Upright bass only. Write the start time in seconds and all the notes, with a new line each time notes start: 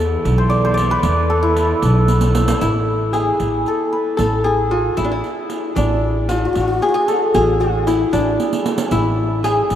Already playing: E2
0.25 B1
1.04 E2
1.83 B1
2.61 A1
3.40 A1
4.19 A1
4.97 A1
5.77 A1
6.56 A1
7.35 A1
8.13 A1
8.92 A1
9.71 A1